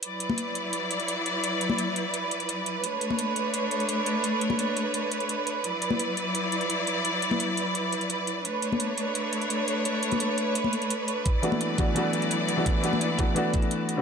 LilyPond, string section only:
\new Staff \with { instrumentName = "String section" } { \time 4/4 \key d \major \tempo 4 = 171 << { <fis e' d''>1~ | <fis e' d''>1 | <a d' cis''>1~ | <a d' cis''>1 |
<fis e' d''>1~ | <fis e' d''>1 | <a d' cis''>1~ | <a d' cis''>1 |
<fis e' d''>1~ | <fis e' d''>1 | } \\ { b'1~ | b'1~ | b'1~ | b'1~ |
b'1~ | b'1 | b'1~ | b'1~ |
b'1~ | b'1 | } >> }